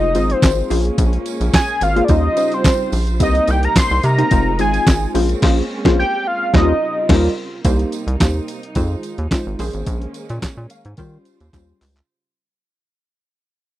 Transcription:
Already playing: F1 A#2 F3 G#3 D#4 D#5
0.15 G#1 G#3 C4 D#4 F4 C5, closed hi-hat, tambourine
0.30 C5, closed hi-hat
0.42 G#1, kick, snare, clap, closed hi-hat, tambourine
0.70 A#1 A#3 C#4 F4 G#4 C5, open hi-hat, tambourine
0.85 closed hi-hat
0.98 A#1, kick, closed hi-hat, tambourine
1.13 closed hi-hat
1.26 closed hi-hat, tambourine
1.41 A#1, closed hi-hat, tambourine
1.54 G#5, kick, snare, clap, closed hi-hat, tambourine
1.68 tambourine
1.81 G#1 F5, closed hi-hat, tambourine
1.96 A#3 C#4 F4 G#4 C5, closed hi-hat
2.04 D5
2.08 D#2 C#3 G3 C#4 D#4 F4 C5 D#5, kick, closed hi-hat, tambourine
2.37 G3 C#4 D#4 F4 C5, closed hi-hat, tambourine
2.52 C5, closed hi-hat
2.64 kick, snare, clap, closed hi-hat, tambourine
2.92 A#1, open hi-hat, tambourine
3.07 closed hi-hat, tambourine
3.19 C2 C3 G3 A#3 C4 D#4 G4 B4 D#5, kick, closed hi-hat, tambourine
3.27 C5
3.35 closed hi-hat
3.48 C2 G5, closed hi-hat, tambourine
3.63 A#5, closed hi-hat
3.76 C6, kick, snare, clap, closed hi-hat, tambourine
3.90 C2, tambourine
4.03 C3 A#5, closed hi-hat, tambourine
4.18 A#3 C4 D#4 G4 C5, closed hi-hat
4.31 F1 F3 G#3 C4 D#4 F4 C5, kick, closed hi-hat, tambourine
4.59 G#1 G#3 C4 D#4 F4 C5 G#5, closed hi-hat, tambourine
4.73 closed hi-hat, tambourine
4.87 G#1, kick, snare, clap, closed hi-hat, tambourine
5.14 A#1 G#3 A#3 C#4 F4 G#4 C5, open hi-hat, tambourine
5.29 closed hi-hat, tambourine
5.42 A#1 A#3 C#4 F4 G#4 C5, kick, snare, crash
5.85 A#1 A#3 C#4 F4 G#4 C5, kick, snare
5.99 G5
6.27 F5
6.54 D#2 C#3 G3 C4 C#4 D#4 F4 A#4 C5 D#5, kick, snare
7.09 D#2 G3 C#4 D#4 F4 A#4 C5, kick, snare, crash
7.65 C2 C3 G3 A#3 D#4 G4 C5, kick, closed hi-hat, tambourine
7.79 closed hi-hat
7.92 closed hi-hat, tambourine
8.07 C2, closed hi-hat
8.20 D#2 A#3 D#4 G4 C5, kick, snare, clap, closed hi-hat, tambourine
8.48 closed hi-hat, tambourine
8.63 closed hi-hat
8.75 F2 D#3 F3 G#3 D#4 F4 C5, kick, closed hi-hat, tambourine
9.03 closed hi-hat, tambourine
9.18 D#2, closed hi-hat
9.31 G#3 D#4 F4 C5, kick, snare, clap, closed hi-hat, tambourine
9.46 G#1
9.59 A#1 G#3 A#3 C#4 G#4 C5, open hi-hat, tambourine
9.73 G#1, closed hi-hat, tambourine
9.86 A#1, kick, closed hi-hat, tambourine
10.02 closed hi-hat
10.14 closed hi-hat, tambourine
10.29 A#2, closed hi-hat, tambourine
10.42 A#2 C#5, kick, snare, clap, closed hi-hat, tambourine
10.57 A#2
10.70 F5, closed hi-hat, tambourine
10.85 G#2 G#5, closed hi-hat
10.97 C#3 D#3 G3 C#4 F4 C5, kick, closed hi-hat, tambourine
11.25 closed hi-hat, tambourine
11.40 D#2, closed hi-hat, tambourine
11.53 D#2 G3 C#4 F4 C5, kick, clap, closed hi-hat, tambourine
11.81 C#2, clap, open hi-hat, tambourine
11.96 clap, closed hi-hat

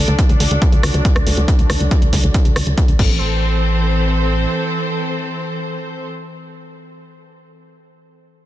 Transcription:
Already playing: F#3 D4 A4 D5
0.08 D2, closed hi-hat
0.19 kick, closed hi-hat
0.29 D2, closed hi-hat
0.40 D2, open hi-hat
0.51 D2, closed hi-hat
0.62 kick, closed hi-hat
0.72 D2, closed hi-hat
0.83 D2, cross-stick, open hi-hat
0.94 D2, closed hi-hat
1.05 kick, closed hi-hat
1.16 D2, cross-stick, closed hi-hat
1.26 D2, open hi-hat
1.37 D2, closed hi-hat
1.48 kick, closed hi-hat
1.59 D2, closed hi-hat
1.70 D2, cross-stick, open hi-hat
1.80 D2, closed hi-hat
1.91 kick, closed hi-hat
2.02 D2, closed hi-hat
2.13 D2, kick, open hi-hat
2.24 D2, closed hi-hat
2.34 kick, closed hi-hat
2.45 D2, closed hi-hat
2.56 D2, cross-stick, open hi-hat
2.67 D2, closed hi-hat
2.78 kick, closed hi-hat
2.88 D2, closed hi-hat
2.99 A1 E3 C4 A4 C5, kick, crash

